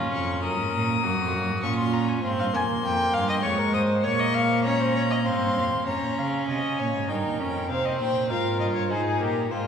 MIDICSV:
0, 0, Header, 1, 5, 480
1, 0, Start_track
1, 0, Key_signature, -5, "minor"
1, 0, Tempo, 605449
1, 342, Time_signature, 3, 2, 24, 8
1, 7668, End_track
2, 0, Start_track
2, 0, Title_t, "Violin"
2, 0, Program_c, 0, 40
2, 0, Note_on_c, 0, 82, 64
2, 98, Note_off_c, 0, 82, 0
2, 102, Note_on_c, 0, 85, 63
2, 337, Note_off_c, 0, 85, 0
2, 345, Note_on_c, 0, 87, 74
2, 1281, Note_off_c, 0, 87, 0
2, 1293, Note_on_c, 0, 85, 76
2, 1409, Note_off_c, 0, 85, 0
2, 1414, Note_on_c, 0, 84, 72
2, 1534, Note_on_c, 0, 82, 75
2, 1546, Note_off_c, 0, 84, 0
2, 1652, Note_on_c, 0, 80, 73
2, 1664, Note_off_c, 0, 82, 0
2, 1765, Note_off_c, 0, 80, 0
2, 1770, Note_on_c, 0, 84, 89
2, 2721, Note_on_c, 0, 85, 78
2, 2732, Note_off_c, 0, 84, 0
2, 2958, Note_off_c, 0, 85, 0
2, 2962, Note_on_c, 0, 87, 73
2, 3026, Note_off_c, 0, 87, 0
2, 3199, Note_on_c, 0, 85, 83
2, 3674, Note_off_c, 0, 85, 0
2, 3681, Note_on_c, 0, 82, 82
2, 4169, Note_on_c, 0, 84, 74
2, 4181, Note_off_c, 0, 82, 0
2, 4652, Note_off_c, 0, 84, 0
2, 4657, Note_on_c, 0, 82, 60
2, 5109, Note_off_c, 0, 82, 0
2, 5137, Note_on_c, 0, 80, 67
2, 5626, Note_on_c, 0, 79, 60
2, 5637, Note_off_c, 0, 80, 0
2, 6103, Note_off_c, 0, 79, 0
2, 6108, Note_on_c, 0, 77, 72
2, 6228, Note_on_c, 0, 75, 67
2, 6239, Note_off_c, 0, 77, 0
2, 6343, Note_off_c, 0, 75, 0
2, 6348, Note_on_c, 0, 79, 75
2, 6579, Note_off_c, 0, 79, 0
2, 6582, Note_on_c, 0, 77, 76
2, 6815, Note_off_c, 0, 77, 0
2, 6821, Note_on_c, 0, 75, 69
2, 6868, Note_off_c, 0, 75, 0
2, 6937, Note_on_c, 0, 73, 61
2, 7056, Note_off_c, 0, 73, 0
2, 7060, Note_on_c, 0, 72, 74
2, 7172, Note_off_c, 0, 72, 0
2, 7177, Note_on_c, 0, 68, 71
2, 7298, Note_on_c, 0, 70, 80
2, 7310, Note_off_c, 0, 68, 0
2, 7540, Note_on_c, 0, 72, 80
2, 7551, Note_off_c, 0, 70, 0
2, 7653, Note_off_c, 0, 72, 0
2, 7668, End_track
3, 0, Start_track
3, 0, Title_t, "Violin"
3, 0, Program_c, 1, 40
3, 0, Note_on_c, 1, 65, 82
3, 337, Note_off_c, 1, 65, 0
3, 342, Note_on_c, 1, 70, 74
3, 821, Note_on_c, 1, 66, 76
3, 832, Note_off_c, 1, 70, 0
3, 1301, Note_on_c, 1, 65, 69
3, 1313, Note_off_c, 1, 66, 0
3, 1769, Note_off_c, 1, 65, 0
3, 1773, Note_on_c, 1, 65, 71
3, 1821, Note_off_c, 1, 65, 0
3, 1894, Note_on_c, 1, 77, 90
3, 1941, Note_off_c, 1, 77, 0
3, 2016, Note_on_c, 1, 80, 97
3, 2080, Note_off_c, 1, 80, 0
3, 2257, Note_on_c, 1, 79, 98
3, 2487, Note_on_c, 1, 77, 99
3, 2499, Note_off_c, 1, 79, 0
3, 2602, Note_off_c, 1, 77, 0
3, 2607, Note_on_c, 1, 75, 94
3, 2654, Note_off_c, 1, 75, 0
3, 2717, Note_on_c, 1, 73, 90
3, 2840, Note_on_c, 1, 70, 83
3, 2852, Note_off_c, 1, 73, 0
3, 2957, Note_on_c, 1, 72, 93
3, 2969, Note_off_c, 1, 70, 0
3, 3201, Note_on_c, 1, 73, 90
3, 3213, Note_off_c, 1, 72, 0
3, 3325, Note_on_c, 1, 75, 90
3, 3337, Note_off_c, 1, 73, 0
3, 3444, Note_on_c, 1, 77, 85
3, 3456, Note_off_c, 1, 75, 0
3, 3680, Note_off_c, 1, 77, 0
3, 3685, Note_on_c, 1, 73, 92
3, 3807, Note_on_c, 1, 72, 88
3, 3819, Note_off_c, 1, 73, 0
3, 3923, Note_off_c, 1, 72, 0
3, 3928, Note_on_c, 1, 73, 83
3, 3976, Note_off_c, 1, 73, 0
3, 4046, Note_on_c, 1, 75, 80
3, 4095, Note_off_c, 1, 75, 0
3, 4161, Note_on_c, 1, 77, 83
3, 4641, Note_off_c, 1, 77, 0
3, 4649, Note_on_c, 1, 73, 68
3, 4902, Note_on_c, 1, 77, 57
3, 4914, Note_off_c, 1, 73, 0
3, 5136, Note_off_c, 1, 77, 0
3, 5140, Note_on_c, 1, 75, 73
3, 5381, Note_on_c, 1, 73, 64
3, 5393, Note_off_c, 1, 75, 0
3, 5622, Note_off_c, 1, 73, 0
3, 5625, Note_on_c, 1, 70, 64
3, 6104, Note_on_c, 1, 72, 69
3, 6116, Note_off_c, 1, 70, 0
3, 6576, Note_on_c, 1, 70, 81
3, 6587, Note_off_c, 1, 72, 0
3, 7058, Note_on_c, 1, 68, 67
3, 7070, Note_off_c, 1, 70, 0
3, 7294, Note_off_c, 1, 68, 0
3, 7298, Note_on_c, 1, 67, 67
3, 7535, Note_off_c, 1, 67, 0
3, 7543, Note_on_c, 1, 65, 83
3, 7668, Note_off_c, 1, 65, 0
3, 7668, End_track
4, 0, Start_track
4, 0, Title_t, "Viola"
4, 0, Program_c, 2, 41
4, 0, Note_on_c, 2, 61, 80
4, 784, Note_off_c, 2, 61, 0
4, 817, Note_on_c, 2, 58, 68
4, 1295, Note_on_c, 2, 61, 70
4, 1307, Note_off_c, 2, 58, 0
4, 1768, Note_off_c, 2, 61, 0
4, 1773, Note_on_c, 2, 60, 85
4, 2011, Note_on_c, 2, 58, 71
4, 2023, Note_off_c, 2, 60, 0
4, 2718, Note_off_c, 2, 58, 0
4, 2723, Note_on_c, 2, 56, 78
4, 3192, Note_off_c, 2, 56, 0
4, 3206, Note_on_c, 2, 58, 84
4, 3691, Note_on_c, 2, 61, 83
4, 3703, Note_off_c, 2, 58, 0
4, 4162, Note_off_c, 2, 61, 0
4, 4167, Note_on_c, 2, 60, 71
4, 4644, Note_off_c, 2, 60, 0
4, 4655, Note_on_c, 2, 61, 74
4, 5620, Note_on_c, 2, 63, 68
4, 5632, Note_off_c, 2, 61, 0
4, 5862, Note_on_c, 2, 61, 62
4, 5874, Note_off_c, 2, 63, 0
4, 6099, Note_off_c, 2, 61, 0
4, 6104, Note_on_c, 2, 60, 73
4, 6582, Note_on_c, 2, 65, 72
4, 6594, Note_off_c, 2, 60, 0
4, 7058, Note_on_c, 2, 63, 73
4, 7069, Note_off_c, 2, 65, 0
4, 7540, Note_off_c, 2, 63, 0
4, 7668, End_track
5, 0, Start_track
5, 0, Title_t, "Cello"
5, 0, Program_c, 3, 42
5, 0, Note_on_c, 3, 39, 67
5, 101, Note_off_c, 3, 39, 0
5, 106, Note_on_c, 3, 41, 77
5, 345, Note_on_c, 3, 42, 84
5, 357, Note_off_c, 3, 41, 0
5, 459, Note_off_c, 3, 42, 0
5, 464, Note_on_c, 3, 44, 68
5, 579, Note_off_c, 3, 44, 0
5, 584, Note_on_c, 3, 46, 73
5, 817, Note_off_c, 3, 46, 0
5, 824, Note_on_c, 3, 42, 75
5, 939, Note_off_c, 3, 42, 0
5, 943, Note_on_c, 3, 41, 80
5, 1065, Note_on_c, 3, 42, 75
5, 1077, Note_off_c, 3, 41, 0
5, 1182, Note_on_c, 3, 44, 78
5, 1194, Note_off_c, 3, 42, 0
5, 1296, Note_off_c, 3, 44, 0
5, 1301, Note_on_c, 3, 46, 81
5, 1767, Note_off_c, 3, 46, 0
5, 1778, Note_on_c, 3, 44, 77
5, 1893, Note_off_c, 3, 44, 0
5, 1897, Note_on_c, 3, 43, 61
5, 2008, Note_off_c, 3, 43, 0
5, 2013, Note_on_c, 3, 41, 68
5, 2060, Note_off_c, 3, 41, 0
5, 2135, Note_on_c, 3, 39, 70
5, 2246, Note_off_c, 3, 39, 0
5, 2251, Note_on_c, 3, 41, 75
5, 2483, Note_off_c, 3, 41, 0
5, 2490, Note_on_c, 3, 43, 71
5, 2722, Note_off_c, 3, 43, 0
5, 2728, Note_on_c, 3, 41, 73
5, 2791, Note_off_c, 3, 41, 0
5, 2966, Note_on_c, 3, 44, 75
5, 3029, Note_off_c, 3, 44, 0
5, 3205, Note_on_c, 3, 46, 83
5, 4173, Note_on_c, 3, 44, 70
5, 4185, Note_off_c, 3, 46, 0
5, 4292, Note_on_c, 3, 43, 62
5, 4304, Note_off_c, 3, 44, 0
5, 4415, Note_on_c, 3, 41, 66
5, 4427, Note_off_c, 3, 43, 0
5, 4535, Note_off_c, 3, 41, 0
5, 4539, Note_on_c, 3, 39, 58
5, 4586, Note_off_c, 3, 39, 0
5, 4660, Note_on_c, 3, 41, 65
5, 4707, Note_off_c, 3, 41, 0
5, 4782, Note_on_c, 3, 46, 58
5, 4829, Note_off_c, 3, 46, 0
5, 4903, Note_on_c, 3, 49, 62
5, 5138, Note_off_c, 3, 49, 0
5, 5143, Note_on_c, 3, 48, 73
5, 5207, Note_off_c, 3, 48, 0
5, 5388, Note_on_c, 3, 46, 66
5, 5503, Note_off_c, 3, 46, 0
5, 5506, Note_on_c, 3, 44, 67
5, 5622, Note_off_c, 3, 44, 0
5, 5626, Note_on_c, 3, 43, 67
5, 5748, Note_on_c, 3, 39, 61
5, 5760, Note_off_c, 3, 43, 0
5, 5869, Note_on_c, 3, 41, 61
5, 5881, Note_off_c, 3, 39, 0
5, 6107, Note_on_c, 3, 48, 67
5, 6119, Note_off_c, 3, 41, 0
5, 6346, Note_on_c, 3, 46, 64
5, 6358, Note_off_c, 3, 48, 0
5, 6584, Note_on_c, 3, 44, 61
5, 6596, Note_off_c, 3, 46, 0
5, 6825, Note_on_c, 3, 43, 66
5, 6837, Note_off_c, 3, 44, 0
5, 7066, Note_on_c, 3, 44, 62
5, 7078, Note_off_c, 3, 43, 0
5, 7301, Note_off_c, 3, 44, 0
5, 7306, Note_on_c, 3, 46, 63
5, 7539, Note_off_c, 3, 46, 0
5, 7545, Note_on_c, 3, 44, 78
5, 7668, Note_off_c, 3, 44, 0
5, 7668, End_track
0, 0, End_of_file